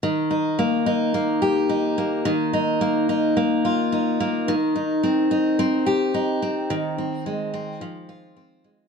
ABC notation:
X:1
M:4/4
L:1/8
Q:"Swing 16ths" 1/4=108
K:Eb
V:1 name="Steel-string acoustic guitar"
E, E B, E B, G E B, | E, E B, E B, F E B, | E, E C E C G E C | E, C A, C F, F C A, |]